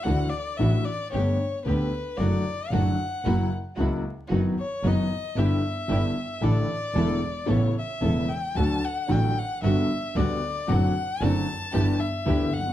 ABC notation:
X:1
M:4/4
L:1/16
Q:1/4=113
K:D
V:1 name="Violin"
f2 d2 e2 d2 c4 B4 | d4 f6 z6 | z2 c2 ^d4 e8 | d8 c2 e4 g2 |
a2 f2 g2 f2 e4 d4 | f4 a6 e4 f2 |]
V:2 name="String section"
[DEF]2 z2 [DEF]2 z2 [A,B,G]2 z2 [A,B,G]2 z2 | [A,DF]2 z2 [A,DF]2 z2 [^A,EF]2 z2 [A,EF]2 z2 | [B,^DF]2 z2 [B,DF]2 z2 [=DEG]2 z2 [DEG]2 z2 | [DEA]2 z2 [DEA]2 z2 [B,CA]2 z2 [B,CA]2 z2 |
[A,DF]2 z2 [A,DF]2 z2 [G,B,F]2 z2 [G,B,F]2 z2 | [=CDF]2 z2 [CDF]2 z2 [B,EG]2 z2 [B,EG]2 z2 |]
V:3 name="Grand piano" clef=bass
[D,,D,E,A,DF]2 z2 [A,,,A,,E,A,DF]2 z2 [G,,,G,,D,A,B,G]2 z2 [D,,D,A,B,G]2 z2 | [F,,D,F,A,F]2 z2 [F,,D,F,A,F]2 z2 [F,,C,F,^A,E]2 z2 [C,,C,F,A,E]2 z2 | [F,,^D,F,B,F]2 z2 [F,,D,F,B,F]2 z2 [G,,,G,,=D,G,B,E]2 z2 [G,,,G,,D,G,B,E]2 z2 | [A,,,A,,D,E,A,E]2 z2 [E,,,E,,D,E,A,E]2 z2 [A,,,A,,C,A,B,E]2 z2 [E,,,E,,C,A,B,E]2 z2 |
[D,,D,F,A,F]2 z2 [A,,,A,,D,F,A,F]2 z2 [G,,,G,,D,G,B,F]2 z2 [D,,D,G,B,F]2 z2 | [F,,D,F,A,=CF]2 z2 [F,,D,F,A,CF]2 z2 [G,,,G,,E,B,DG]2 z2 [D,,D,E,B,DG]2 z/2 F,,,/2 G,,,/2 z/2 |]
V:4 name="Double bass" clef=bass
D,,2 z2 A,,,2 z2 G,,,2 z2 D,,2 z2 | F,,,2 z2 F,,,2 z2 F,,,2 z2 C,,2 z2 | F,,,2 z2 F,,,2 z2 G,,,2 z2 G,,,2 z2 | A,,,2 z2 E,,,2 z2 A,,,2 z2 E,,,2 z2 |
D,,2 z2 A,,,2 z2 G,,,2 z2 D,,2 z2 | F,,,2 z2 F,,,2 z2 G,,,2 z2 D,,2 G,,,2 |]